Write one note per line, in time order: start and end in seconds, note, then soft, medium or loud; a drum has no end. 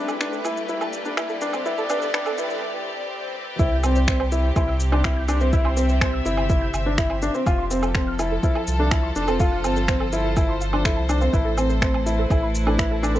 0.00 3.59 G3 medium
0.00 0.12 D4 medium
0.00 1.27 E4 medium
0.00 8.38 G4 medium
0.00 4.42 B4 medium
0.00 riser medium
0.08 0.17 A4 medium
0.08 low woodblock medium
0.08 shaker soft
0.20 0.36 D4 medium
0.20 0.29 B4 loud
0.20 finger snap medium
0.20 shaker soft
0.32 0.41 A4 loud
0.32 shaker soft
0.45 0.60 E4 medium
0.45 low woodblock medium
0.45 shaker medium
0.57 0.66 A4 medium
0.57 shaker soft
0.69 0.84 E4 medium
0.69 0.78 B4 loud
0.69 shaker soft
0.76 4.52 D5 medium
0.81 0.90 A4 loud
0.81 low woodblock medium
0.81 shaker soft
0.93 shaker medium
1.05 1.13 D4 medium
1.05 1.14 A4 medium
1.05 shaker soft
1.17 1.33 E4 medium
1.17 1.26 B4 loud
1.17 finger snap medium
1.17 low woodblock medium
1.17 shaker soft
1.29 1.38 A4 loud
1.29 shaker soft
1.41 1.49 D4 medium
1.41 shaker medium
1.53 1.61 C4 medium
1.53 1.62 A4 medium
1.53 low woodblock medium
1.53 shaker soft
1.66 1.81 E4 loud
1.66 1.74 B4 loud
1.66 shaker soft
1.78 1.87 A4 loud
1.78 shaker soft
1.90 2.05 D4 medium
1.90 1.99 B4 loud
1.90 low woodblock medium
1.90 shaker medium
2.02 2.11 A4 loud
2.02 shaker soft
2.14 2.29 D4 medium
2.14 2.23 B4 loud
2.14 finger snap loud
2.14 shaker soft
2.26 2.35 A4 loud
2.26 low woodblock medium
2.26 shaker soft
2.38 2.53 E4 medium
2.38 2.47 B4 loud
2.38 shaker medium
2.50 2.59 A4 loud
2.50 shaker soft
2.62 swell medium
3.59 4.52 C2 loud
3.59 7.47 C3 medium
3.59 3.75 E4 loud
3.59 3.65 C5 loud
3.59 kick loud
3.59 shaker soft
3.72 3.77 G6 medium
3.83 3.99 C4 medium
3.83 low woodblock medium
3.83 shaker medium
3.91 8.22 C4 medium
3.96 4.02 C5 medium
3.96 shaker soft
4.08 4.23 C4 medium
4.08 4.17 E5 medium
4.08 finger snap loud
4.08 kick loud
4.08 shaker soft
4.20 4.29 C5 loud
4.20 low woodblock medium
4.32 4.47 E4 medium
4.32 shaker medium
4.44 4.53 C5 medium
4.56 6.21 C2 loud
4.56 4.71 E4 medium
4.56 4.60 C6 medium
4.56 kick loud
4.56 low woodblock medium
4.56 shaker soft
4.68 4.74 E6 medium
4.80 shaker medium
4.92 5.00 D4 medium
4.92 4.98 C5 medium
4.92 low woodblock medium
5.04 5.20 E4 medium
5.04 5.10 C5 loud
5.04 finger snap loud
5.04 kick loud
5.04 shaker soft
5.17 5.22 G6 medium
5.28 5.36 D4 medium
5.28 low woodblock medium
5.28 shaker medium
5.34 8.11 E5 medium
5.41 5.49 C4 medium
5.41 5.47 C5 medium
5.41 shaker soft
5.53 5.68 E4 loud
5.53 5.62 E5 loud
5.53 kick loud
5.53 shaker soft
5.65 5.74 C5 loud
5.65 low woodblock medium
5.77 5.92 C4 medium
5.77 shaker medium
5.89 5.98 C5 medium
5.89 shaker soft
6.01 6.17 C4 medium
6.01 6.05 C6 medium
6.01 finger snap medium
6.01 kick loud
6.01 low woodblock medium
6.01 shaker soft
6.13 6.19 E6 medium
6.25 6.69 G1 loud
6.25 6.41 E4 medium
6.25 shaker medium
6.37 6.43 C5 medium
6.37 low woodblock medium
6.49 6.65 E4 medium
6.49 6.55 C5 medium
6.49 kick loud
6.49 shaker soft
6.61 6.67 G6 medium
6.74 7.30 G1 medium
6.74 low woodblock medium
6.74 shaker medium
6.86 6.94 D4 medium
6.86 6.92 C5 medium
6.98 7.13 E4 medium
6.98 7.07 E5 loud
6.98 finger snap loud
6.98 kick loud
6.98 shaker soft
7.10 7.19 C5 loud
7.10 low woodblock medium
7.22 7.30 D4 medium
7.22 shaker medium
7.34 7.42 C4 medium
7.34 7.43 C5 medium
7.34 shaker soft
7.46 8.39 F1 loud
7.46 11.34 F3 medium
7.46 7.62 F4 loud
7.46 7.50 A5 medium
7.46 kick loud
7.46 low woodblock medium
7.46 shaker soft
7.58 7.64 C6 medium
7.71 7.86 C4 medium
7.71 11.33 F4 medium
7.71 12.61 A4 medium
7.71 shaker medium
7.82 7.88 A4 medium
7.82 low woodblock medium
7.82 shaker soft
7.95 8.10 C4 medium
7.95 8.01 A4 loud
7.95 finger snap medium
7.95 kick loud
7.95 shaker soft
8.07 8.13 F6 medium
8.19 8.34 E4 medium
8.19 low woodblock medium
8.19 shaker medium
8.31 8.37 A4 medium
8.43 8.59 E4 medium
8.43 8.52 C5 medium
8.43 kick loud
8.43 shaker soft
8.55 8.64 A4 loud
8.55 low woodblock medium
8.64 9.11 C2 medium
8.64 13.20 C5 medium
8.64 shaker medium
8.79 8.87 D4 medium
8.79 8.88 A4 medium
8.91 9.07 E4 medium
8.91 8.95 A5 medium
8.91 finger snap loud
8.91 kick loud
8.91 low woodblock medium
8.91 shaker soft
9.03 9.09 C6 medium
9.16 9.66 F1 medium
9.16 9.24 D4 medium
9.16 shaker medium
9.27 9.36 C4 medium
9.27 9.33 A4 medium
9.27 low woodblock medium
9.27 shaker soft
9.39 9.55 F4 loud
9.39 9.45 A4 loud
9.39 kick loud
9.39 shaker soft
9.52 9.58 F6 medium
9.64 10.97 G1 medium
9.64 9.80 C4 medium
9.64 low woodblock medium
9.64 shaker medium
9.76 9.82 A4 medium
9.76 shaker soft
9.88 10.04 C4 medium
9.88 9.97 C5 loud
9.88 finger snap medium
9.88 kick loud
9.88 shaker soft
10.00 10.09 A4 loud
10.00 low woodblock medium
10.12 10.28 E4 medium
10.12 shaker medium
10.24 10.33 A4 medium
10.37 10.52 E4 medium
10.37 10.40 A5 medium
10.37 kick loud
10.37 low woodblock medium
10.37 shaker soft
10.49 10.55 C6 medium
10.61 10.64 F5 medium
10.61 shaker medium
10.73 10.81 D4 medium
10.73 10.82 C6 medium
10.73 low woodblock medium
10.85 11.01 E4 medium
10.85 10.91 A4 loud
10.85 finger snap medium
10.85 kick loud
10.85 shaker soft
10.97 11.29 C2 medium
10.97 11.03 A5 medium
11.09 11.17 D4 medium
11.09 low woodblock medium
11.09 shaker medium
11.21 11.29 C4 medium
11.21 11.27 F5 medium
11.21 shaker soft
11.33 12.26 A1 loud
11.33 13.20 A3 medium
11.33 11.49 E4 medium
11.33 11.42 B4 loud
11.33 kick medium
11.33 shaker soft
11.45 11.54 A4 loud
11.58 11.73 C4 medium
11.58 13.20 E4 medium
11.58 low woodblock medium
11.58 shaker medium
11.69 11.78 A4 medium
11.69 shaker soft
11.75 13.20 B4 medium
11.82 11.97 C4 medium
11.82 11.85 E5 medium
11.82 finger snap medium
11.82 kick loud
11.82 shaker soft
11.94 12.00 A5 medium
11.94 low woodblock medium
12.06 12.22 E4 medium
12.06 shaker medium
12.19 12.24 A4 medium
12.30 13.20 A1 loud
12.30 12.46 E4 medium
12.30 12.36 A4 loud
12.30 kick loud
12.30 low woodblock medium
12.30 shaker soft
12.43 12.48 B5 medium
12.55 shaker medium
12.67 12.74 D4 medium
12.67 12.72 A4 medium
12.67 low woodblock medium
12.78 12.94 E4 medium
12.78 12.87 B4 loud
12.78 finger snap loud
12.78 kick loud
12.78 shaker soft
12.91 13.00 A4 loud
13.03 13.11 D4 medium
13.03 low woodblock medium
13.03 shaker medium
13.15 13.20 C4 medium
13.15 13.20 A4 medium
13.15 shaker soft